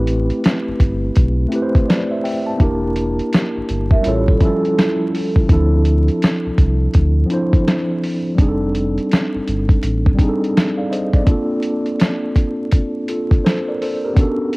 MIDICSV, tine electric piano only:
0, 0, Header, 1, 2, 480
1, 0, Start_track
1, 0, Tempo, 722892
1, 1727, Time_signature, 4, 2, 24, 8
1, 9674, End_track
2, 0, Start_track
2, 0, Title_t, "Tine electric piano"
2, 0, Program_c, 0, 4
2, 0, Control_c, 0, 64, 127
2, 0, Note_on_c, 0, 57, 76
2, 0, Note_on_c, 0, 60, 82
2, 0, Note_on_c, 0, 64, 80
2, 0, Note_on_c, 0, 67, 79
2, 0, Note_on_c, 0, 71, 85
2, 578, Note_off_c, 0, 57, 0
2, 585, Note_off_c, 0, 60, 0
2, 590, Note_off_c, 0, 64, 0
2, 597, Note_off_c, 0, 67, 0
2, 602, Note_off_c, 0, 71, 0
2, 986, Note_on_c, 0, 57, 83
2, 995, Note_on_c, 0, 60, 78
2, 1009, Note_on_c, 0, 64, 74
2, 1020, Note_on_c, 0, 67, 73
2, 1033, Note_on_c, 0, 71, 78
2, 1075, Note_off_c, 0, 71, 0
2, 1076, Note_on_c, 0, 72, 97
2, 1250, Note_on_c, 0, 74, 66
2, 1254, Note_on_c, 0, 71, 54
2, 1282, Note_off_c, 0, 72, 0
2, 1394, Note_off_c, 0, 74, 0
2, 1396, Note_off_c, 0, 71, 0
2, 1400, Note_on_c, 0, 76, 66
2, 1405, Note_on_c, 0, 72, 59
2, 1483, Note_off_c, 0, 76, 0
2, 1485, Note_off_c, 0, 72, 0
2, 1486, Note_on_c, 0, 79, 73
2, 1492, Note_on_c, 0, 76, 60
2, 1601, Note_off_c, 0, 57, 0
2, 1606, Note_off_c, 0, 60, 0
2, 1613, Note_off_c, 0, 64, 0
2, 1618, Note_off_c, 0, 67, 0
2, 1632, Note_off_c, 0, 79, 0
2, 1635, Note_off_c, 0, 76, 0
2, 1636, Note_on_c, 0, 81, 66
2, 1699, Note_on_c, 0, 58, 84
2, 1714, Note_on_c, 0, 62, 78
2, 1724, Note_on_c, 0, 64, 74
2, 1736, Control_c, 0, 64, 0
2, 1736, Note_on_c, 0, 67, 78
2, 1748, Note_on_c, 0, 70, 90
2, 1866, Note_off_c, 0, 81, 0
2, 1869, Control_c, 0, 64, 127
2, 2497, Note_off_c, 0, 58, 0
2, 2504, Note_off_c, 0, 62, 0
2, 2509, Note_off_c, 0, 64, 0
2, 2515, Note_off_c, 0, 67, 0
2, 2522, Note_off_c, 0, 70, 0
2, 2662, Note_on_c, 0, 55, 94
2, 2674, Note_on_c, 0, 61, 78
2, 2689, Note_on_c, 0, 64, 85
2, 2696, Control_c, 0, 64, 0
2, 2700, Note_on_c, 0, 65, 88
2, 2712, Note_on_c, 0, 69, 107
2, 2823, Control_c, 0, 64, 127
2, 2880, Note_off_c, 0, 55, 0
2, 2886, Note_off_c, 0, 61, 0
2, 2894, Note_off_c, 0, 64, 0
2, 2899, Note_off_c, 0, 65, 0
2, 2905, Note_off_c, 0, 69, 0
2, 2906, Note_on_c, 0, 55, 81
2, 2921, Note_on_c, 0, 61, 81
2, 2932, Note_on_c, 0, 64, 78
2, 2943, Note_on_c, 0, 53, 79
2, 2956, Note_on_c, 0, 69, 96
2, 3521, Note_off_c, 0, 55, 0
2, 3528, Note_off_c, 0, 61, 0
2, 3534, Note_off_c, 0, 64, 0
2, 3540, Note_off_c, 0, 53, 0
2, 3546, Note_off_c, 0, 69, 0
2, 3625, Note_on_c, 0, 52, 73
2, 3637, Note_on_c, 0, 60, 73
2, 3649, Note_on_c, 0, 62, 81
2, 3657, Control_c, 0, 64, 0
2, 3660, Note_on_c, 0, 64, 79
2, 3667, Note_on_c, 0, 53, 84
2, 3673, Note_on_c, 0, 69, 97
2, 3691, Note_off_c, 0, 52, 0
2, 3792, Control_c, 0, 64, 127
2, 4426, Note_off_c, 0, 60, 0
2, 4432, Note_off_c, 0, 62, 0
2, 4438, Note_off_c, 0, 64, 0
2, 4441, Note_off_c, 0, 53, 0
2, 4444, Note_off_c, 0, 69, 0
2, 4823, Note_on_c, 0, 53, 83
2, 4834, Note_on_c, 0, 60, 75
2, 4848, Note_on_c, 0, 62, 78
2, 4859, Note_on_c, 0, 64, 81
2, 4872, Note_on_c, 0, 72, 96
2, 5440, Note_off_c, 0, 53, 0
2, 5445, Note_off_c, 0, 60, 0
2, 5452, Note_off_c, 0, 62, 0
2, 5458, Note_off_c, 0, 64, 0
2, 5464, Note_off_c, 0, 72, 0
2, 5545, Note_on_c, 0, 55, 91
2, 5556, Note_on_c, 0, 60, 74
2, 5568, Note_on_c, 0, 62, 82
2, 5574, Control_c, 0, 64, 0
2, 5581, Note_on_c, 0, 63, 73
2, 5592, Note_on_c, 0, 68, 77
2, 5635, Note_off_c, 0, 68, 0
2, 5635, Note_on_c, 0, 69, 95
2, 5671, Control_c, 0, 64, 127
2, 6340, Note_off_c, 0, 55, 0
2, 6346, Note_off_c, 0, 60, 0
2, 6352, Note_off_c, 0, 62, 0
2, 6358, Note_off_c, 0, 63, 0
2, 6385, Note_off_c, 0, 69, 0
2, 6741, Note_on_c, 0, 55, 87
2, 6754, Note_on_c, 0, 60, 79
2, 6764, Note_on_c, 0, 62, 79
2, 6778, Note_on_c, 0, 63, 82
2, 6789, Note_on_c, 0, 68, 74
2, 6832, Note_on_c, 0, 69, 89
2, 6833, Note_off_c, 0, 68, 0
2, 7157, Note_on_c, 0, 77, 61
2, 7164, Note_on_c, 0, 74, 51
2, 7241, Note_off_c, 0, 77, 0
2, 7245, Note_off_c, 0, 74, 0
2, 7247, Note_on_c, 0, 75, 71
2, 7250, Note_on_c, 0, 72, 64
2, 7358, Note_off_c, 0, 55, 0
2, 7365, Note_off_c, 0, 60, 0
2, 7370, Note_off_c, 0, 62, 0
2, 7377, Note_off_c, 0, 63, 0
2, 7393, Note_off_c, 0, 75, 0
2, 7394, Note_off_c, 0, 72, 0
2, 7401, Note_on_c, 0, 74, 68
2, 7404, Note_off_c, 0, 69, 0
2, 7462, Note_on_c, 0, 58, 82
2, 7474, Note_on_c, 0, 60, 74
2, 7487, Note_on_c, 0, 62, 80
2, 7497, Control_c, 0, 64, 0
2, 7498, Note_on_c, 0, 65, 77
2, 7513, Note_on_c, 0, 69, 92
2, 7599, Control_c, 0, 64, 127
2, 7629, Note_off_c, 0, 74, 0
2, 8258, Note_off_c, 0, 58, 0
2, 8264, Note_off_c, 0, 60, 0
2, 8271, Note_off_c, 0, 62, 0
2, 8276, Note_off_c, 0, 65, 0
2, 8284, Note_off_c, 0, 69, 0
2, 8690, Note_on_c, 0, 69, 68
2, 8695, Note_on_c, 0, 65, 54
2, 8917, Note_off_c, 0, 69, 0
2, 8919, Note_off_c, 0, 65, 0
2, 8926, Note_on_c, 0, 72, 72
2, 8930, Note_on_c, 0, 69, 64
2, 9072, Note_off_c, 0, 72, 0
2, 9074, Note_off_c, 0, 69, 0
2, 9084, Note_on_c, 0, 74, 65
2, 9087, Note_on_c, 0, 70, 56
2, 9165, Note_off_c, 0, 74, 0
2, 9166, Note_off_c, 0, 70, 0
2, 9172, Note_on_c, 0, 72, 64
2, 9176, Note_on_c, 0, 69, 62
2, 9315, Note_off_c, 0, 72, 0
2, 9317, Note_off_c, 0, 69, 0
2, 9324, Note_on_c, 0, 70, 69
2, 9330, Note_on_c, 0, 67, 55
2, 9384, Note_on_c, 0, 59, 86
2, 9395, Note_on_c, 0, 61, 79
2, 9408, Note_on_c, 0, 62, 77
2, 9416, Control_c, 0, 64, 0
2, 9420, Note_on_c, 0, 66, 80
2, 9433, Note_on_c, 0, 69, 89
2, 9535, Control_c, 0, 64, 127
2, 9550, Note_off_c, 0, 70, 0
2, 9553, Note_off_c, 0, 67, 0
2, 9674, Note_off_c, 0, 59, 0
2, 9674, Note_off_c, 0, 61, 0
2, 9674, Note_off_c, 0, 62, 0
2, 9674, Note_off_c, 0, 66, 0
2, 9674, Note_off_c, 0, 69, 0
2, 9674, End_track
0, 0, End_of_file